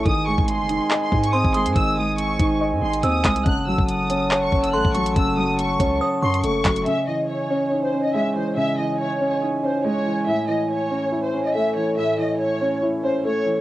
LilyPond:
<<
  \new Staff \with { instrumentName = "Synth bell" } { \time 4/4 \key cis \minor \tempo 4 = 141 r2. bis''8 dis'''8 | r2. e'''8 dis'''8 | r2. bis''8 cis'''8 | r2 dis'''8 cis'''8 r4 |
r1 | r1 | r1 | r1 | }
  \new Staff \with { instrumentName = "Violin section" } { \time 4/4 \key cis \minor dis'''8 cis'''8 bis''4~ bis''16 bis''8 cis'''16 dis'''8 bis''8 | e'''8 dis'''8 cis'''4 r8 bis''8 dis'''4 | fis'''8 e'''8 dis'''4~ dis'''16 cis'''8 e'''16 fis'''8 cis'''8 | e'''8 dis'''8 cis'''4 r8 bis''8 cis'''4 |
e''8 dis''8 cis''4~ cis''16 bis'8 dis''16 e''8 bis'8 | e''8 dis''8 cis''4 r8 bis'8 cis''4 | e''8 dis''8 cis''4~ cis''16 bis'8 dis''16 e''8 cis''8 | e''8 dis''8 cis''4 r8 bis'8 cis''4 | }
  \new Staff \with { instrumentName = "Brass ensemble" } { \time 4/4 \key cis \minor << { gis''1~ | gis''1 | a''1~ | a''1 |
gis''1~ | gis''1~ | gis''1~ | gis''1 | } \\ { <bis gis' dis''>1~ | <bis gis' dis''>1 | <cis' a' fis''>1~ | <cis' a' fis''>1 |
<cis cis' dis''>1~ | <cis cis' dis''>1 | <a, a cis''>1~ | <a, a cis''>1 | } >> }
  \new Staff \with { instrumentName = "Grand piano" } { \time 4/4 \key cis \minor dis8 gis4 dis'8 dis''8 dis'8 bis8 gis8 | dis8 gis4 dis'8 dis''8 dis'8 bis8 gis8 | cis8 fis4 cis'8 cis''8 cis'8 a8 fis8 | cis8 fis4 cis'8 cis''8 cis'8 a8 fis8 |
cis8 e4 cis'8 dis'8 cis'8 gis8 e8 | cis8 e4 cis'8 dis'8 cis'8 gis8 e8 | a,8 e4 cis'8 e'8 cis'8 a8 e8 | a,8 e4 cis'8 e'8 cis'8 a8 e8 | }
  \new Staff \with { instrumentName = "808-style bass" } { \clef bass \time 4/4 \key cis \minor gis,,8. gis,,8 fis,,8 r8. gis,8. gis,,8 gis,16 | gis,,4. gis,,8. gis,16 gis,,8 dis,8 bis,,8 | fis,,8 a,,16 fis,,4.~ fis,,16 fis,,8 a,,16 a,,8. | fis,,4. cis,8 r8 fis,8 fis,,8 fis,,8 |
r1 | r1 | r1 | r1 | }
  \new DrumStaff \with { instrumentName = "Drums" } \drummode { \time 4/4 <hh bd>8. bd16 hh8 hh8 hc8 bd16 hh16 r16 bd16 hh16 hh16 | <hh bd>4 hh8 <hh bd>8 r8. hh16 hh8 <hc hh bd>16 hh16 | <hh bd>8. bd16 hh8 hh8 hc8 bd16 hh16 r16 bd16 hh16 hh16 | <hh bd>4 hh8 <hh bd>8 r8. hh16 hh8 <hc hh bd>16 hh16 |
hh4 r4 r4 r4 | r4 r4 r4 r4 | r4 r4 r4 r4 | r4 r4 r4 r4 | }
>>